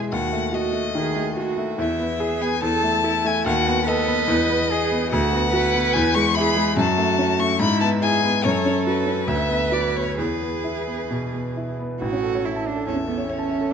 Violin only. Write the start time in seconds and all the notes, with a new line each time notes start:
0.12 F#5
0.54 D#5
1.79 E5
2.42 G#5
2.63 A5
3.26 G#5
3.47 F#5
3.88 D#5
5.11 F#5
5.93 G#5
6.14 C#6
6.35 B5
6.78 A5
7.40 C#6
7.61 B5
7.80 A5
8.02 G#5
8.44 C#5
8.87 B4
9.28 E5
9.73 D5
9.96 C#5
10.18 B4
12.86 E5
13.30 C#5